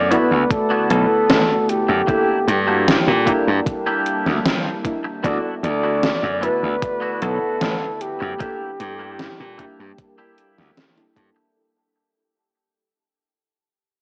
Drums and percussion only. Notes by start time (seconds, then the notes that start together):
0.12 closed hi-hat
0.51 kick, closed hi-hat
0.90 closed hi-hat
1.30 snare, closed hi-hat
1.69 closed hi-hat
2.08 kick, closed hi-hat
2.48 closed hi-hat
2.88 snare, closed hi-hat
3.27 kick, closed hi-hat
3.66 kick, closed hi-hat
4.06 closed hi-hat
4.26 snare
4.46 snare, closed hi-hat
4.85 kick, closed hi-hat
5.24 kick, closed hi-hat
5.64 closed hi-hat
6.03 snare, closed hi-hat
6.43 closed hi-hat
6.82 kick, closed hi-hat
7.22 closed hi-hat
7.61 snare, closed hi-hat
8.01 closed hi-hat
8.40 kick, closed hi-hat
8.80 closed hi-hat
9.19 snare, closed hi-hat
9.59 kick, closed hi-hat
9.98 kick, closed hi-hat
10.38 closed hi-hat
10.58 snare
10.77 snare, closed hi-hat
10.98 closed hi-hat
11.16 kick, closed hi-hat